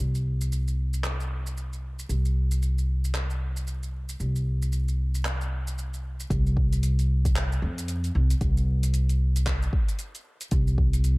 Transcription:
0.00 upright bass C2
0.15 shaker
0.41 shaker
0.52 shaker
0.68 shaker
0.94 shaker
1.04 clap, shaker
1.20 shaker
1.47 shaker
1.57 shaker
1.73 shaker
1.99 shaker
2.09 upright bass C2, shaker
2.25 shaker
2.51 shaker
2.62 shaker
2.78 shaker
3.05 shaker
3.15 clap, shaker
3.30 shaker
3.57 shaker
3.67 shaker
3.83 shaker
4.09 shaker
4.20 upright bass C2, shaker
4.36 shaker
4.62 shaker
4.72 shaker
4.88 shaker
5.15 shaker
5.25 clap, shaker
5.41 shaker
5.67 shaker
5.78 shaker
5.94 shaker
6.20 shaker
6.30 upright bass C2, kick, closed hi-hat, shaker
6.47 shaker
6.57 kick
6.73 closed hi-hat, shaker
6.83 closed hi-hat, shaker
6.99 closed hi-hat, shaker
7.25 kick, closed hi-hat, shaker
7.36 clap, closed hi-hat, shaker
7.52 shaker
7.62 upright bass F2
7.78 closed hi-hat, shaker
7.88 closed hi-hat, shaker
8.04 closed hi-hat, shaker
8.15 upright bass C2
8.30 closed hi-hat, shaker
8.41 upright bass C2, kick, closed hi-hat, shaker
8.57 shaker
8.83 closed hi-hat, shaker
8.94 closed hi-hat, shaker
9.09 closed hi-hat, shaker
9.36 closed hi-hat, shaker
9.46 kick, clap, closed hi-hat, shaker
9.62 shaker
9.73 kick
9.89 closed hi-hat, shaker
9.99 closed hi-hat, shaker
10.15 closed hi-hat, shaker
10.41 closed hi-hat, shaker
10.51 upright bass C2, kick, closed hi-hat, shaker
10.67 shaker
10.78 kick
10.93 closed hi-hat, shaker
11.04 closed hi-hat, shaker

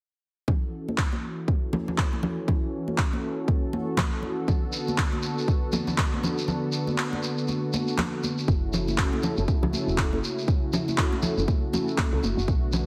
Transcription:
0.48 analog synth pad E3 C#4 F#4 A4, kick, low conga
0.88 high conga
0.98 kick, clap
1.13 high conga
1.48 kick
1.73 high conga, low conga
1.88 low conga
1.98 kick, clap
2.13 high conga
2.23 low conga
2.48 kick, low conga
2.88 high conga
2.98 kick, clap
3.13 high conga
3.48 kick, high conga
3.73 high conga
3.97 kick, clap, high conga, low conga
4.23 high conga
4.48 analog synth pad D3 B3, kick, low conga, shekere
4.73 shekere
4.88 high conga, shekere
4.98 kick, clap
5.13 high conga
5.22 shekere
5.38 shekere
5.48 kick, shekere
5.72 high conga, low conga, shekere
5.87 low conga, shekere
5.98 kick, clap, shekere
6.14 high conga
6.23 low conga, shekere
6.38 shekere
6.48 low conga, shekere
6.72 shekere
6.87 high conga, shekere
6.98 clap, shekere
7.13 high conga
7.23 shekere
7.38 shekere
7.48 high conga, shekere
7.73 high conga, shekere
7.88 shekere
7.98 clap, high conga, low conga, shekere
8.23 high conga, shekere
8.38 shekere
8.47 fm bass F#1, analog synth pad C#3 A3 E4 F#4, kick, shekere
8.73 low conga, shekere
8.88 high conga, shekere
8.98 analog polysynth C#4 E4 F#4 A4, kick, clap, shekere
9.13 high conga
9.23 low conga, shekere
9.37 fm bass F#1, analog polysynth C#4 E4 F#4 A4, shekere
9.48 kick, shekere
9.63 fm bass C#2, low conga
9.73 analog polysynth C#4 E4 F#4 A4, high conga, shekere
9.87 fm bass E1, shekere
9.98 kick, clap, shekere
10.13 fm bass F#1, analog polysynth C#4 E4 F#4 A4, high conga
10.24 shekere
10.38 shekere
10.48 kick, shekere
10.73 low conga, shekere
10.88 high conga, shekere
10.98 analog polysynth C#4 E4 F#4 A4, kick, clap
11.13 high conga
11.23 low conga, shekere
11.38 fm bass F#1, analog polysynth C#4 E4 F#4 A4, shekere
11.48 kick, high conga, shekere
11.73 analog polysynth C#4 E4 F#4 A4, high conga, low conga, shekere
11.88 shekere
11.98 kick, clap, high conga, shekere
12.13 fm bass C#2, analog polysynth C#4 E4 F#4 A4
12.23 fm bass F#1, high conga, shekere
12.37 fm bass F#1, shekere
12.48 fm bass B1, analog synth pad D3 B3, kick, shekere
12.72 low conga, shekere

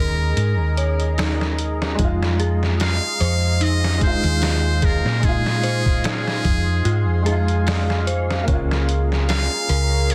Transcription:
Already playing: fingered electric bass D#2, upright piano G#3 C#4 D#4, ambient pad C#4 G#4 D#5 A#5, synth bell D#4 G#4 A#4, muted trumpet A#4
0.37 fingered electric bass G#2, closed hi-hat
0.59 fingered electric bass D#2
0.77 synth bell C#5, closed hi-hat
1.00 closed hi-hat
1.18 synth bell D#4, snare, open hi-hat
1.41 snare
1.59 closed hi-hat
1.82 snare
1.95 upright piano G#3, ambient pad C6, kick, closed hi-hat
1.99 fingered electric bass F2, upright piano D#4, synth bell F4, ambient pad F5
2.04 upright piano F4
2.23 snare
2.40 synth bell G#4, closed hi-hat
2.63 snare
2.80 muted trumpet F5, snare, closed hi-hat
3.20 fingered electric bass F2, synth bell C5, closed hi-hat
3.61 synth bell D#4, muted trumpet D#5, closed hi-hat
3.84 snare
3.98 upright piano G#3, kick, closed hi-hat
4.03 upright piano D#4, muted trumpet C5
4.07 upright piano F4
4.24 fingered electric bass D#2, closed hi-hat
4.42 synth bell F4, snare, closed hi-hat
4.82 synth bell G#4, muted trumpet A#4, kick, closed hi-hat
5.05 fingered electric bass A#2, snare
5.19 upright piano G#3, kick, closed hi-hat
5.24 upright piano D#4, muted trumpet G#4
5.29 upright piano F4
5.46 snare
5.63 synth bell C5, closed hi-hat
5.86 kick
6.04 synth bell D#4, muted trumpet G#4, snare, closed hi-hat
6.28 snare
6.45 fingered electric bass F2, kick, closed hi-hat
6.85 fingered electric bass G#2, synth bell F4, closed hi-hat
7.07 fingered electric bass F2
7.22 upright piano G#3, synth bell G#4, closed hi-hat
7.27 upright piano D#4
7.32 upright piano F4
7.48 closed hi-hat
7.67 snare, open hi-hat
7.90 snare
8.07 synth bell C5, closed hi-hat
8.31 snare
8.44 upright piano A#3, synth bell F4
8.48 fingered electric bass C#2, upright piano C#4, ambient pad C#5 A#5, kick, closed hi-hat
8.53 upright piano F4
8.71 snare
8.89 closed hi-hat
9.12 snare
9.29 synth bell G#4, muted trumpet F5, snare, closed hi-hat
9.69 fingered electric bass C#2, synth bell A#4, closed hi-hat
10.10 muted trumpet C#5, closed hi-hat

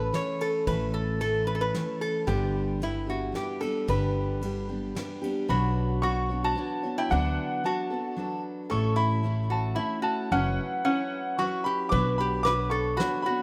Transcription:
Already playing: steel-string acoustic guitar E3 A3 C#4 A4, resonator guitar played with a steel bar B4
0.13 steel-string acoustic guitar E3 A3 C#4 A4, resonator guitar played with a steel bar C#5, snare, ride
0.41 resonator guitar played with a steel bar A4, ride
0.67 upright bass A1, steel-string acoustic guitar A2 E3 A3 C#4 A4, resonator guitar played with a steel bar B4, kick, ride
0.94 resonator guitar played with a steel bar A4
1.21 steel-string acoustic guitar E3 A3 C#4 A4, resonator guitar played with a steel bar A4, ride
1.47 resonator guitar played with a steel bar B4
1.55 resonator guitar played with a steel bar A4
1.61 resonator guitar played with a steel bar B4
1.74 steel-string acoustic guitar E3 A3 C#4 A4, snare, ride
2.01 resonator guitar played with a steel bar A4, ride
2.27 upright bass G1, steel-string acoustic guitar G2 D3 G3 B3 D4 G4, resonator guitar played with a steel bar G4, kick, ride
2.80 steel-string acoustic guitar G3 B3 D4 G4, resonator guitar played with a steel bar E4, ride
3.07 steel-string acoustic guitar G3 B3 D4 G4, resonator guitar played with a steel bar F#4
3.32 steel-string acoustic guitar G3 B3 D4 G4, resonator guitar played with a steel bar G4, snare, ride
3.61 steel-string acoustic guitar G3 B3 D4 G4, resonator guitar played with a steel bar A4, ride
3.87 upright bass G1, steel-string acoustic guitar G2 D3 G3 B3 D4 G4, resonator guitar played with a steel bar B4, kick, ride
4.42 steel-string acoustic guitar G3 B3 D4 G4, ride
4.69 steel-string acoustic guitar G3 B3 D4 G4
4.95 steel-string acoustic guitar G3 B3 D4 G4, snare, ride
5.22 steel-string acoustic guitar G3 B3 D4 G4, ride
5.48 upright bass B1, steel-string acoustic guitar B2 F#3 B3 D4 F#4 C#5, resonator guitar played with a steel bar F#4, upright piano B5
6.02 steel-string acoustic guitar B3 D4 F#4, resonator guitar played with a steel bar F#4, upright piano C#6
6.06 steel-string acoustic guitar C#5
6.29 steel-string acoustic guitar B3 D4 F#4 C#5
6.44 resonator guitar played with a steel bar F#4, upright piano A5
6.55 steel-string acoustic guitar B3 D4 F#4 C#5
6.83 steel-string acoustic guitar B3 D4 F#4 C#5
6.98 resonator guitar played with a steel bar E4, upright piano G5
7.10 upright bass D2, steel-string acoustic guitar D3 F#3 B3 D4 A4, resonator guitar played with a steel bar D4, upright piano F#5
7.64 steel-string acoustic guitar F#3 B3 D4 A4, resonator guitar played with a steel bar F#4, upright piano A5
7.90 steel-string acoustic guitar B3 D4 A4
8.17 steel-string acoustic guitar F#3 B3 D4 A4
8.70 upright bass A1, steel-string acoustic guitar A2 A3 C#4 E4 A4, resonator guitar played with a steel bar A4, upright piano C#6
8.96 resonator guitar played with a steel bar E4, upright piano B5
9.23 steel-string acoustic guitar A3 C#4 E4 A4
9.50 resonator guitar played with a steel bar F#4, upright piano A5
9.75 steel-string acoustic guitar A3 C#4 E4 A4, resonator guitar played with a steel bar E4, upright piano B5
10.02 resonator guitar played with a steel bar F#4, upright piano A5
10.31 upright bass F#1, steel-string acoustic guitar F#3 C#4 E4 B4, resonator guitar played with a steel bar C#4, upright piano F#5
10.85 steel-string acoustic guitar F#3 C#4 E4 B4, resonator guitar played with a steel bar C#4, upright piano F#5
11.38 steel-string acoustic guitar F#3 C#4 E4 B4, resonator guitar played with a steel bar F#4, upright piano C#6
11.64 resonator guitar played with a steel bar G4, upright piano B5
11.89 upright bass B1, steel-string acoustic guitar B2 F#3 B3 D4, resonator guitar played with a steel bar B4, upright piano D6, kick, closed hi-hat
11.94 steel-string acoustic guitar F#4 C#5
12.18 resonator guitar played with a steel bar G4, upright piano B5
12.43 steel-string acoustic guitar B3 D4 F#4, resonator guitar played with a steel bar B4, upright piano D6, snare, closed hi-hat
12.48 steel-string acoustic guitar C#5
12.70 resonator guitar played with a steel bar A4, upright piano C#6
12.97 steel-string acoustic guitar B3 D4, resonator guitar played with a steel bar F#4, upright piano B5, snare, closed hi-hat
13.01 steel-string acoustic guitar F#4 C#5
13.22 resonator guitar played with a steel bar F#4, upright piano B5
13.27 steel-string acoustic guitar B3 D4 F#4 C#5

